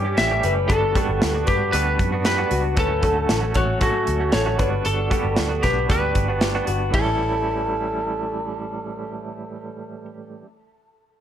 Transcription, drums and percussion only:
0.17 snare loud
0.17 closed hi-hat medium
0.43 closed hi-hat medium
0.70 kick loud
0.70 closed hi-hat medium
0.95 kick medium
0.95 closed hi-hat medium
1.22 snare medium
1.22 closed hi-hat medium
1.47 kick medium
1.47 closed hi-hat medium
1.73 closed hi-hat loud
1.99 kick medium
1.99 closed hi-hat medium
2.25 snare loud
2.25 closed hi-hat medium
2.51 closed hi-hat medium
2.77 kick loud
2.77 closed hi-hat medium
3.03 kick medium
3.03 closed hi-hat medium
3.29 snare medium
3.29 closed hi-hat medium
3.54 kick medium
3.54 closed hi-hat medium
3.81 kick medium
3.81 closed hi-hat medium
4.07 closed hi-hat medium
4.32 snare medium
4.32 closed hi-hat medium
4.59 kick medium
4.59 closed hi-hat medium
4.85 closed hi-hat medium
5.11 kick medium
5.11 closed hi-hat medium
5.37 snare medium
5.37 closed hi-hat medium
5.63 kick medium
5.63 snare soft
5.63 closed hi-hat medium
5.90 kick medium
5.90 closed hi-hat loud
6.15 kick medium
6.15 closed hi-hat medium
6.41 snare medium
6.41 closed hi-hat medium
6.67 closed hi-hat medium
6.94 kick medium
6.94 ride medium

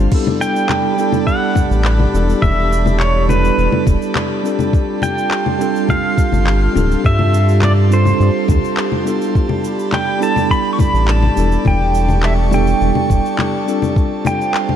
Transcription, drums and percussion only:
0.12 kick loud
0.12 crash loud
0.12 cabasa soft
0.27 low conga medium
0.41 cabasa medium
0.56 cabasa soft
0.69 clap loud
0.69 low conga medium
0.69 cabasa soft
0.98 cabasa medium
1.12 low conga medium
1.12 cabasa soft
1.27 kick medium
1.27 cabasa soft
1.56 kick loud
1.56 low conga medium
1.56 cabasa medium
1.72 cabasa soft
1.85 clap loud
1.85 cabasa soft
2.00 low conga medium
2.15 cabasa medium
2.30 cabasa soft
2.42 kick loud
2.42 low conga medium
2.42 cabasa soft
2.73 cabasa medium
2.86 low conga medium
2.86 cabasa soft
3.00 clap loud
3.00 cabasa soft
3.29 low conga medium
3.29 cabasa medium
3.45 cabasa soft
3.58 cabasa soft
3.72 low conga medium
3.87 kick loud
3.87 cabasa medium
4.02 cabasa soft
4.15 clap loud
4.15 low conga medium
4.15 cabasa soft
4.45 cabasa medium
4.59 low conga medium
4.59 cabasa soft
4.73 kick loud
4.73 cabasa soft
5.02 low conga medium
5.02 cabasa medium
5.18 cabasa soft
5.31 clap loud
5.31 cabasa soft
5.46 low conga medium
5.61 cabasa medium
5.76 cabasa soft
5.89 kick medium
5.89 low conga medium
5.89 cabasa soft
6.18 kick loud
6.18 cabasa medium
6.33 low conga medium
6.33 cabasa soft
6.47 clap loud
6.47 cabasa soft
6.76 low conga medium
6.76 cabasa medium
6.91 cabasa soft
7.04 kick loud
7.04 cabasa soft
7.19 low conga medium
7.34 cabasa medium
7.49 cabasa soft
7.62 clap loud
7.62 low conga medium
7.62 cabasa soft
7.92 cabasa medium
8.05 low conga medium
8.05 cabasa soft
8.21 cabasa soft
8.48 kick loud
8.48 low conga medium
8.48 cabasa medium
8.64 cabasa soft
8.77 clap loud
8.77 cabasa soft
8.92 low conga medium
9.07 cabasa medium
9.22 cabasa soft
9.35 kick loud
9.35 cabasa soft
9.49 low conga medium
9.64 cabasa medium
9.79 cabasa soft
9.92 clap medium
9.92 low conga medium
9.92 cabasa soft
10.22 cabasa medium
10.36 low conga medium
10.36 cabasa soft
10.51 kick medium
10.51 cabasa soft
10.79 kick loud
10.79 low conga medium
10.79 cabasa medium
10.95 cabasa soft
11.08 clap medium
11.08 cabasa soft
11.23 low conga medium
11.37 cabasa medium
11.52 cabasa soft
11.65 kick loud
11.65 low conga medium
11.65 cabasa soft
11.95 cabasa medium
12.09 low conga medium
12.09 cabasa soft
12.23 clap loud
12.23 cabasa soft
12.51 low conga medium
12.51 cabasa medium
12.67 cabasa soft
12.81 cabasa soft
12.95 low conga medium
13.10 kick loud
13.10 cabasa medium
13.26 cabasa soft
13.39 clap medium
13.39 low conga medium
13.39 cabasa soft
13.68 cabasa medium
13.82 low conga medium
13.82 cabasa soft
13.96 kick loud
13.96 cabasa soft
14.25 low conga medium
14.25 cabasa medium
14.41 cabasa soft
14.54 clap loud
14.54 cabasa soft
14.69 low conga medium

